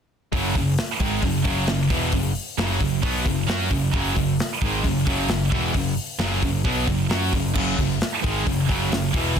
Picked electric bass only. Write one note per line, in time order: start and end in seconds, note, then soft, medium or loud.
0.32 0.53 F#1 medium
0.55 0.76 F#1 medium
1.00 1.21 G#1 medium
1.22 1.43 F#1 medium
1.45 1.66 F#1 loud
1.67 1.88 F#1 medium
1.90 2.11 E1 loud
2.13 2.34 F#1 medium
2.58 2.79 F#1 loud
2.80 3.02 F#1 medium
3.03 3.25 B1 loud
3.25 3.47 F#1 medium
3.48 3.69 F#2 loud
3.71 3.92 F#1 medium
3.94 4.15 F#1 medium
4.16 4.37 F#1 medium
4.62 4.83 G#1 loud
4.84 5.05 F#1 medium
5.07 5.28 F#1 loud
5.28 5.50 F#1 medium
5.52 5.73 E1 loud
5.74 5.96 F#1 medium
6.19 6.40 F#1 loud
6.43 6.64 F#1 medium
6.64 6.86 B1 loud
6.88 7.08 F#1 medium
7.09 7.31 F#2 medium
7.32 7.54 F#1 medium
7.56 7.77 F#1 medium
7.78 7.99 F#1 medium
8.24 8.45 G#1 medium
8.47 8.68 F#1 medium
8.69 8.90 F#1 loud
8.90 9.12 F#1 medium
9.14 9.35 E1 loud